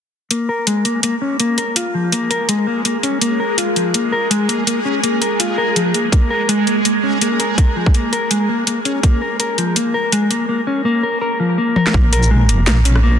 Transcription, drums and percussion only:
0.31 closed hi-hat medium
0.67 closed hi-hat medium
0.85 closed hi-hat soft
1.03 closed hi-hat medium
1.40 closed hi-hat medium
1.58 closed hi-hat soft
1.76 closed hi-hat medium
2.12 closed hi-hat medium
2.31 closed hi-hat soft
2.49 closed hi-hat medium
2.85 closed hi-hat medium
3.03 closed hi-hat soft
3.21 closed hi-hat medium
3.58 closed hi-hat medium
3.76 closed hi-hat soft
3.94 closed hi-hat medium
4.31 closed hi-hat medium
4.49 closed hi-hat soft
4.67 closed hi-hat medium
5.04 closed hi-hat medium
5.22 closed hi-hat soft
5.40 closed hi-hat medium
5.76 closed hi-hat medium
5.94 closed hi-hat soft
6.12 kick loud
6.12 closed hi-hat medium
6.49 closed hi-hat medium
6.67 closed hi-hat soft
6.85 closed hi-hat medium
7.21 closed hi-hat medium
7.40 closed hi-hat soft
7.58 kick loud
7.58 closed hi-hat medium
7.86 kick medium
7.94 closed hi-hat medium
8.13 closed hi-hat soft
8.31 closed hi-hat medium
8.67 closed hi-hat medium
8.85 closed hi-hat soft
9.03 kick loud
9.03 closed hi-hat medium
9.40 closed hi-hat medium
9.58 closed hi-hat soft
9.76 closed hi-hat medium
10.12 closed hi-hat medium
10.31 closed hi-hat soft
11.76 high tom medium
11.87 snare medium
11.94 kick loud
12.13 closed hi-hat medium
12.23 shaker medium
12.49 closed hi-hat medium
12.67 snare loud
12.67 shaker medium
12.85 closed hi-hat medium
12.96 cross-stick medium

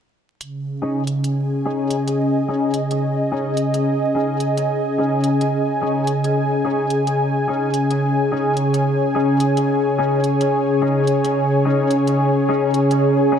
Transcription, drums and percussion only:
0.41 closed hi-hat soft
1.07 closed hi-hat soft
1.24 closed hi-hat soft
1.90 closed hi-hat soft
2.08 closed hi-hat soft
2.74 closed hi-hat soft
2.91 closed hi-hat soft
3.57 closed hi-hat soft
3.74 closed hi-hat soft
4.40 closed hi-hat soft
4.57 closed hi-hat soft
5.24 closed hi-hat soft
5.41 closed hi-hat soft
6.07 closed hi-hat soft
6.24 closed hi-hat soft
6.90 closed hi-hat soft
7.07 closed hi-hat soft
7.74 closed hi-hat soft
7.91 closed hi-hat soft
8.57 closed hi-hat soft
8.74 closed hi-hat soft
9.40 closed hi-hat soft
9.57 closed hi-hat soft
10.24 closed hi-hat soft
10.41 closed hi-hat soft
11.07 closed hi-hat soft
11.24 closed hi-hat soft
11.91 closed hi-hat soft
12.07 closed hi-hat soft
12.74 closed hi-hat soft
12.91 closed hi-hat soft

